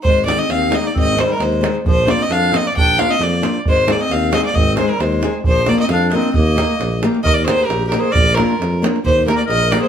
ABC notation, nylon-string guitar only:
X:1
M:2/4
L:1/8
Q:1/4=134
K:Eb
V:1 name="Nylon-string guitar"
z [E,A,CE] z [E,A,CE] | z [E,A,CE] z [E,A,CE] | z [F,B,DF] z [F,B,DF] | z [F,B,DF] z [F,B,DF] |
z [A,CEA] z [A,CEA] | z [A,CEA] z [A,CEA] | z [B,DFB] z [B,DFB] | z [B,EGB] z [B,EGB] |
z [B,EGB] z [B,EGB] | z [B,DFB] z [B,DFB] | z [B,EGB] z [B,EGB] |]